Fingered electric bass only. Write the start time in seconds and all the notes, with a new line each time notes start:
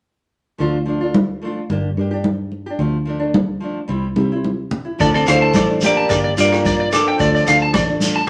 0.60 D2
1.70 G1
1.97 G2
2.79 D2
3.89 C2
4.17 C3
5.01 D2
5.28 D2
5.56 A1
6.11 G1
6.38 G2
7.20 D2
7.48 D2
7.74 A1